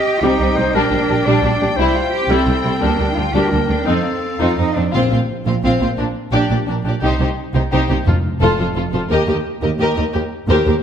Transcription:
Already playing: G4 D#5 G5
0.22 C2 G3 C4 D#4 G4
0.40 C2 G3 C4
0.56 C2 G3 C4 C5
0.74 A#1 G3 D4 A#4 G5
0.92 A#1 G3 D4
1.09 A#1 G3 D4
1.26 A#1 G3 D4 D5
1.42 A#1 G3 D4
1.60 A#1 G3 D4
1.76 C2 G3 E4 C5
1.96 F4
2.13 G4
2.28 C2 G3 C4 E4 A4
2.47 C2 G3 E4
2.65 C2 G3 E4
2.81 D2 G3 A#3 D4 A#4
3.00 D2 G3 D4
3.17 D2 G3 D4 F4
3.34 D2 G3 D4 G4 A#4
3.51 D2 G3 A#3 D4
3.69 D2 G3 D4
3.86 F2 C4 D#4 A4 F5
4.40 F2 C4 D#4 F4
4.58 F2 C4 D#4
4.76 F2 C4 D4 D#4
4.93 A#1 A#2 C4 F4 F5
5.11 A#1 A#2 C4 F4 F5
5.46 A#1 A#2 C4 F4 F5
5.64 A#1 A#2 C4 F4 F5
5.81 A#1 A#2 C4 F4 F5
5.98 A#1 A#2 D4 A#4
6.32 A#1 A#2 D4 G4 D5
6.49 A#1 A#2 D4 G4 D5
6.67 A#1 A#2 D4 A#4
6.85 A#1 A#2 D4 G4 D5
7.02 C2 C3 D#4 G4 C5
7.20 C2 C3 D#4 G4 C5
7.54 C2 C3 D#4 G4 C5
7.71 C2 C3 D#4 G4 C5
7.89 C2 C3 D#4 G4 C5
8.06 F1 F2 F4 A4
8.41 F1 F2 F4 A4 C5
8.59 F1 F2 F4 A4 C5
8.76 F1 F2 F4 A4
8.93 F1 F2 F4 A4 C5
9.09 D#2 G4 A#4 D#5
9.27 D#2 G4 A#4 D#5
9.62 D#2 G4 A#4 D#5
9.79 D#2 G4 A#4 D#5
9.96 D#2 G4 A#4 D#5
10.13 D#2 G4 A#4
10.49 D#2 G4 A#4 C5
10.65 D#2 G4 A#4 C5

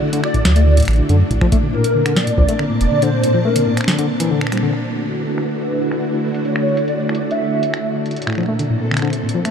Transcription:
Already playing: D3 A3 D4 E4 F#4
0.02 D3
0.13 D3, closed hi-hat
0.24 D5, finger snap
0.34 A2, kick, closed hi-hat
0.45 D2 F#3, snare
0.56 A3, closed hi-hat
0.66 D3
0.77 A2, closed hi-hat
0.80 closed hi-hat
0.83 closed hi-hat
0.85 A1, finger snap, closed hi-hat
0.88 closed hi-hat
0.93 closed hi-hat
0.96 D3, closed hi-hat
1.09 F#2 D3, closed hi-hat
1.31 A#1 A2 A#2, kick, closed hi-hat
1.35 A#3
1.41 F3, finger snap, kick
1.52 A3, kick, closed hi-hat
1.63 D3
1.72 A2 C4 A#4
1.82 A5, closed hi-hat
1.95 D3
2.06 D3, finger snap, closed hi-hat
2.16 D5, snare
2.27 A2, closed hi-hat
2.38 D2 F3, kick
2.49 A3, closed hi-hat
2.59 D3, finger snap
2.70 A2
2.81 F1 D5, closed hi-hat
2.91 D3
3.02 D3 C5, closed hi-hat
3.24 A2, closed hi-hat
3.34 F3
3.45 A3 A#4
3.56 D3, closed hi-hat
3.66 A2
3.77 finger snap, closed hi-hat
3.81 finger snap
3.84 D3, finger snap
3.88 finger snap, snare
3.91 finger snap
3.99 D3, closed hi-hat
4.20 E3, closed hi-hat
4.31 D3
4.41 D4, finger snap
4.47 finger snap
4.52 G3, finger snap, closed hi-hat
4.57 finger snap
4.63 D3
4.74 D3 D4, finger snap, closed hi-hat
4.79 A3 F#4, closed hi-hat
4.84 closed hi-hat
4.90 closed hi-hat
5.00 E4
5.06 closed hi-hat
5.08 closed hi-hat
5.11 closed hi-hat
5.17 B4, closed hi-hat
5.19 closed hi-hat
5.22 closed hi-hat
5.25 closed hi-hat
5.38 finger snap
5.49 closed hi-hat
5.59 closed hi-hat
5.92 finger snap, closed hi-hat
6.02 closed hi-hat
6.34 closed hi-hat
6.45 C#5, closed hi-hat
6.56 finger snap
6.77 closed hi-hat
6.88 D5, closed hi-hat
7.09 finger snap
7.15 closed hi-hat
7.31 E5, closed hi-hat
7.63 closed hi-hat
7.74 finger snap, closed hi-hat
8.06 closed hi-hat
8.11 closed hi-hat
8.16 A#2, closed hi-hat
8.22 A#3, closed hi-hat
8.27 A2, finger snap
8.30 finger snap
8.33 finger snap
8.35 F3, finger snap
8.38 finger snap
8.43 finger snap
8.46 A3, finger snap
8.54 A4
8.59 D3 C4, closed hi-hat
8.70 A2
8.91 D3, finger snap
8.94 finger snap
8.97 finger snap, closed hi-hat
8.99 D3, finger snap
9.02 finger snap
9.05 finger snap
9.08 finger snap
9.10 finger snap, closed hi-hat
9.24 A2
9.29 closed hi-hat
9.34 F3
9.45 A3, finger snap, closed hi-hat

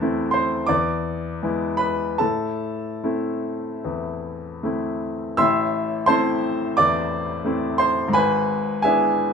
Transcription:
Already playing: E2 A5 A6
0.01 A3 C4 E4
0.31 C5 C6
0.67 E2 D5 D6
1.43 G#3 B3 E4
1.77 B4 B5
2.18 A2 A4 A5
3.04 A3 C4 E4
3.85 E2
4.63 A3 C4 E4
5.37 A1 A2 E5 C6 E6
6.06 A3 C4 E4 C5 A5 C6
6.77 E2 D5 D6
7.45 A3 C4 E4
7.78 C5 C6
8.08 G#2
8.13 G#1 B4 G#5 B5
8.82 B3 D4 E4 G#4 E5 G#5

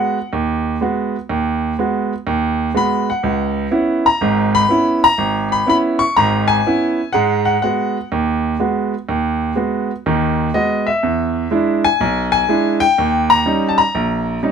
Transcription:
Already playing: G#3 B3 F#4 F#5
0.33 D#2
0.81 G#3 B3 F#4
1.29 D#2
1.79 G#3 B3 F#4
2.27 D#2
2.74 G#3 B3 F#4 B5
3.10 F#5
3.23 C#2
3.71 B3 C#4 E4
4.06 A#5
4.21 G#1 G#2
4.55 B5
4.69 B3 C#4 E4
5.04 A#5
5.18 G#1
5.52 B5
5.67 B3 C#4 E4 B5
5.99 C#6
6.17 G#1 G#2 A#5
6.48 G#5
6.67 B3 C#4 E4
7.13 G#2 G#3 F#5
7.45 F#5
7.62 G#3 B3 F#4 F#5
8.12 D#2
8.60 G#3 B3 F#4
9.09 D#2
9.56 G#3 B3 F#4
10.06 D#2 D#3
10.54 G#3 B3 F#4 D#5
10.87 E5
11.03 E2
11.51 G#3 D4 E4
11.84 G#5
12.01 B1
12.32 G#5
12.49 G#3 D4 E4
12.80 G5
12.98 D#2
13.30 A#5
13.46 G3 C#4 D#4
13.69 A5
13.78 A#5
13.95 A#1
14.43 G3 C#4 D#4

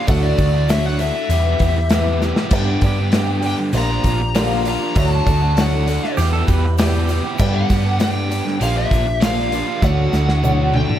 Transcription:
0.07 D2 D3 F#3 A3 D4 E4 F#4 D5 E5 F#5, kick, open hi-hat, shaker
0.23 D5
0.38 D2 D3 A3 D4 E4 F#4, kick, open hi-hat, shaker
0.53 A3 D4 F#4
0.69 D3 F#3 A3 D4 E4 F#4 D5 E5, snare, open hi-hat, shaker
0.86 F#5
0.99 D3 A3 D4 E4 F#4 E5, open hi-hat, shaker
1.15 muted overdriven electric guitar stroke
1.29 E2 B2 E3 G3 B3 E4 G4 B4 E5, open hi-hat, shaker
1.46 E3 G3 B3 G4
1.59 E2 B3 E4 G4, kick, open hi-hat, shaker
1.78 muted overdriven electric guitar stroke
1.89 E2 B2 E3 G3 B3 E4 G4 B4 E5, snare, open hi-hat, shaker
1.94 G4
2.21 E3 G3 B3 E4 G4, snare, shaker
2.36 G3 B3 G4, snare
2.41 E3
2.49 G2 B3 D4 G4 B4 D5, kick, crash, shaker
2.53 G2 D3 G3 B3 D4 G4 G5
2.81 G2 G3 B3 G4, kick, open hi-hat, shaker
2.85 D4 G4
2.99 G3 B3 D4 G4
3.12 G2 D3 G3 B3 D4 G4 B4 E5, snare, open hi-hat, shaker
3.41 G3 B3 G4, open hi-hat
3.45 D4 G4 G5
3.59 muted overdriven electric guitar stroke
3.73 A#1 A#2 F3 A#3 D4 F4 G4 A#4 D5, open hi-hat, shaker
3.78 A#5
3.89 A#3 D4 F4
4.04 A#1 F3 A#3 D4 G4, kick, open hi-hat, shaker
4.21 muted overdriven electric guitar stroke
4.34 A#2 D3 F3 A#3 D4 F4 G4 A#4 D5, snare, open hi-hat, shaker
4.65 F3 A#3 D4 F4 G4 A#5, open hi-hat, shaker
4.80 A#3 D4 F4
4.95 D2 D3 F#3 A3 D4 E4 F#4 D5 E5 A5, kick, open hi-hat, shaker
5.25 D2 D3 A3 D4 E4, kick, open hi-hat, shaker
5.29 F#4
5.42 A3 D4 F#4
5.56 D3 F#3 A3 D4 E4 F#4 D5 F#5, snare, open hi-hat, shaker
5.85 D3 A3 E4, open hi-hat, shaker
5.89 D4 F#4
6.04 muted overdriven electric guitar stroke, snare
6.17 E2 B2 E3 G3 B3 E4 G4 B4 E5, open hi-hat, shaker
6.21 G4
6.33 E3 G3 B3 G4 A4
6.47 E2 G3 E4 G4 B4, kick, open hi-hat, shaker
6.51 E3
6.65 muted overdriven electric guitar stroke
6.78 E2 B2 E3 G3 B3 E4 G4 B4 E5, snare, open hi-hat, shaker
7.08 E3 G3 B3 E4 G4, open hi-hat, shaker
7.24 E3 G3 B3 G4
7.37 G2 D3 G3 B3 D4 G4 B4 D5 G5, kick, crash, shaker
7.41 G4
7.55 F#5
7.69 G2 G3 B3 D4 G4, kick, open hi-hat, shaker
7.84 G3 B3 D4 G4
7.99 G2 D3 G3 B3 D4 G4 B4 D5 G5, snare, open hi-hat, shaker
8.29 G3 B3 D4 G4, open hi-hat, shaker
8.45 muted overdriven electric guitar stroke, snare
8.60 A#1 A#2 F3 A#3 D4 F4 G4 A#4 D5 F5, open hi-hat, shaker
8.76 A#3 D4 F4 E5
8.90 A#1 F3 A#3 D4 G4, kick, open hi-hat, shaker
9.06 muted overdriven electric guitar stroke
9.21 A#2 D3 F3 A#3 D4 F4 G4 A#4 F5, snare, open hi-hat, shaker
9.52 F3 A#3 D4 F4 G4, open hi-hat, shaker
9.67 A#3 D4 F4
9.80 D2 D3 F#3 A3 D4 E4 F#4 D5 E5 F#5, kick, snare, shaker
9.84 F#4
10.12 D2 D3 A3 D4 E4 F#4, snare, shaker
10.27 A3 D4 F#4, snare
10.43 D3 F#3 A3 D4 E4 F#4 D5 E5, high tom, shaker
10.73 D3 A3 D4 E4 F#4 G5, high tom
10.89 muted overdriven electric guitar stroke, mid tom

